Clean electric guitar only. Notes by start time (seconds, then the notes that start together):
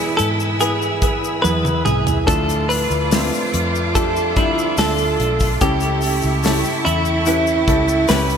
Already playing: G#4
0.17 A4
0.61 G#4
1.42 B4
1.85 G#4
2.27 A4
2.69 B4
3.95 A4
4.37 E4
4.79 A4
5.61 G4
6.85 E4
7.27 E4
8.09 B4